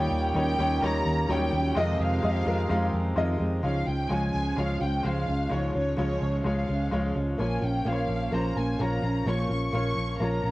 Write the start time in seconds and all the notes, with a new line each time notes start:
Already playing: A#2 D#3 G3 A#3 C#4 D#4 F4 G4 C#5 G5
0.11 D#2
0.34 D#2 D#3 G3 A#3 C#4 D#4 G4 C#5 G5
0.58 D#2 G3 A#3 C#4 D#4 G4 C#5
0.82 D#2 D#3 G3 A#3 C#4 D#4 G4 C#5 A#5
1.06 D#2
1.28 D#2 D#3 F#3 A#3 C#4 D#4 G4 C#5 G5
1.35 G3
1.52 D#2 A#3 C#4 G4
1.75 F2 C3 D#3 F3 G#3 C4 D#4 F4 G4 G#4 D#5
1.99 F2 F5
2.22 F2 D#3 G#3 C4 F4 D#5
2.45 F2 D#3 G#3 C4 F4 A#4
2.69 F2 D#3 G#3 C4 F4 F5
2.93 F2
3.16 F2 D#3 G#3 C4 F4 D#5
3.39 F2 D#3 G#3 C4 F4
3.62 C#2 G#2 C#3 F3 G#3 C#4 F4 C#5 F5
3.85 C#2 G#3 C#4 F4 G5
4.09 C#2 C#3 F3 G#3 C#4 F4 C#5 G#5
4.34 C#2
4.56 C#2 F3 G#3 C#4 F4 C#5 F5
4.79 C#2 G#3 C#4 F4 G5
5.03 C#2 C#3 F3 G#3 C#4 F4 C5 F5
5.26 C#2 G#3 C#4 F4
5.49 C#2 G#2 C#3 F3 G#3 C#4 F4 C#5
5.73 C#2 G#3 C#4 F4 C#5
5.97 C#2 C#3 F3 G#3 C#4 F4 C#5
6.22 C#2
6.43 C#2 F3 G#3 C#4 F4 C#5 F5
6.68 C#2 G#3 C#4 F4
6.91 C#2 C#3 F3 G#3 C#4 F4 C#5
7.15 C#2 G#3 C#4 F4
7.38 A#1 A#2 F3 A#3 C#4 F4 C#5 G#5
7.61 A#1 C#4 F4 G5
7.85 A#1 A#2 F3 A#3 C#4 F4 C5 F5
7.93 C#5
8.09 A#1
8.32 A#1 F3 A#3 C#4 F4 C5 A#5
8.55 A#1 A#3 C#4 F4 G#5
8.79 A#1 A#2 F3 A#3 C#4 F4 C#5 A#5
9.02 A#1 A#3 C#4 F4
9.26 A#1 A#2 F3 A#3 C#4 F4 C#5 C#6
9.49 A#1 A#3 C#4 F4 C#6
9.73 A#1 A#2 F3 A#3 C#4 F4 C#5 C#6
9.96 A#1
10.20 A#1 F3 A#3 C#4 F4 C#5 A#5
10.43 A#1 A#3 C#4 F4